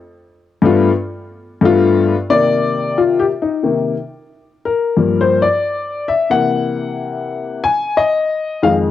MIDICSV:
0, 0, Header, 1, 2, 480
1, 0, Start_track
1, 0, Key_signature, -3, "minor"
1, 0, Tempo, 666667
1, 1662, Time_signature, 4, 2, 24, 8
1, 6414, End_track
2, 0, Start_track
2, 0, Title_t, "Upright piano"
2, 0, Program_c, 0, 0
2, 446, Note_on_c, 0, 43, 99
2, 452, Note_on_c, 0, 57, 80
2, 460, Note_on_c, 0, 59, 85
2, 467, Note_on_c, 0, 62, 82
2, 472, Note_on_c, 0, 65, 98
2, 637, Note_off_c, 0, 43, 0
2, 640, Note_off_c, 0, 57, 0
2, 644, Note_off_c, 0, 59, 0
2, 648, Note_off_c, 0, 62, 0
2, 650, Note_off_c, 0, 65, 0
2, 1161, Note_on_c, 0, 43, 88
2, 1169, Note_on_c, 0, 57, 86
2, 1176, Note_on_c, 0, 59, 74
2, 1183, Note_on_c, 0, 62, 78
2, 1190, Note_on_c, 0, 65, 107
2, 1528, Note_off_c, 0, 43, 0
2, 1532, Note_off_c, 0, 57, 0
2, 1535, Note_off_c, 0, 59, 0
2, 1539, Note_off_c, 0, 62, 0
2, 1542, Note_off_c, 0, 65, 0
2, 1654, Note_on_c, 0, 48, 61
2, 1656, Note_on_c, 0, 74, 112
2, 1657, Note_on_c, 0, 51, 47
2, 1662, Note_on_c, 0, 58, 62
2, 2145, Note_on_c, 0, 65, 81
2, 2154, Note_off_c, 0, 74, 0
2, 2301, Note_on_c, 0, 67, 85
2, 2308, Note_off_c, 0, 65, 0
2, 2337, Note_off_c, 0, 67, 0
2, 2349, Note_off_c, 0, 48, 0
2, 2351, Note_off_c, 0, 51, 0
2, 2353, Note_off_c, 0, 58, 0
2, 2462, Note_on_c, 0, 63, 65
2, 2613, Note_on_c, 0, 48, 48
2, 2617, Note_on_c, 0, 51, 45
2, 2621, Note_on_c, 0, 58, 54
2, 2685, Note_off_c, 0, 63, 0
2, 2833, Note_off_c, 0, 48, 0
2, 2835, Note_off_c, 0, 51, 0
2, 2837, Note_off_c, 0, 58, 0
2, 3351, Note_on_c, 0, 70, 77
2, 3576, Note_on_c, 0, 43, 62
2, 3578, Note_on_c, 0, 53, 49
2, 3586, Note_on_c, 0, 58, 62
2, 3750, Note_on_c, 0, 72, 90
2, 3758, Note_off_c, 0, 70, 0
2, 3895, Note_off_c, 0, 72, 0
2, 3903, Note_on_c, 0, 74, 91
2, 3918, Note_off_c, 0, 43, 0
2, 3919, Note_off_c, 0, 53, 0
2, 3923, Note_off_c, 0, 58, 0
2, 4379, Note_on_c, 0, 76, 92
2, 4397, Note_off_c, 0, 74, 0
2, 4529, Note_off_c, 0, 76, 0
2, 4535, Note_on_c, 0, 48, 54
2, 4539, Note_on_c, 0, 52, 50
2, 4542, Note_on_c, 0, 58, 59
2, 4542, Note_on_c, 0, 78, 99
2, 5470, Note_off_c, 0, 48, 0
2, 5472, Note_off_c, 0, 52, 0
2, 5473, Note_off_c, 0, 58, 0
2, 5498, Note_on_c, 0, 80, 107
2, 5531, Note_off_c, 0, 78, 0
2, 5739, Note_on_c, 0, 75, 106
2, 5747, Note_off_c, 0, 80, 0
2, 6192, Note_off_c, 0, 75, 0
2, 6209, Note_on_c, 0, 41, 55
2, 6213, Note_on_c, 0, 51, 57
2, 6216, Note_on_c, 0, 77, 98
2, 6217, Note_on_c, 0, 56, 66
2, 6270, Note_off_c, 0, 77, 0
2, 6414, Note_off_c, 0, 41, 0
2, 6414, Note_off_c, 0, 51, 0
2, 6414, Note_off_c, 0, 56, 0
2, 6414, End_track
0, 0, End_of_file